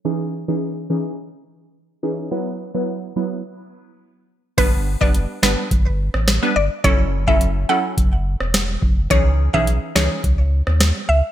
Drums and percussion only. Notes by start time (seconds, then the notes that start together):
4.58 kick, closed hi-hat, crash
5.01 kick
5.14 closed hi-hat
5.43 cross-stick, snare
5.71 kick, closed hi-hat
6.14 cross-stick
6.28 cross-stick, snare, closed hi-hat
6.84 kick, closed hi-hat
7.28 kick
7.41 closed hi-hat
7.97 kick, closed hi-hat
8.40 cross-stick
8.54 cross-stick, snare, closed hi-hat
8.82 kick
9.11 kick, closed hi-hat
9.54 kick
9.67 closed hi-hat
9.96 cross-stick, snare
10.24 kick, closed hi-hat
10.67 cross-stick
10.80 cross-stick, snare, closed hi-hat